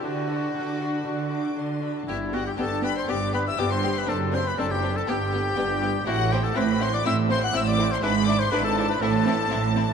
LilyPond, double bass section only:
\new Staff \with { instrumentName = "Double bass section" } { \clef bass \time 4/4 \key g \major \tempo 4 = 121 r1 | g,,4 g,,4 g,,4 g,,4 | fis,,4 fis,,4 g,,4 g,,4 | a,,4 a,,4 a,,4 a,,4 |
gis,,4 gis,,4 a,,4 a,,4 | }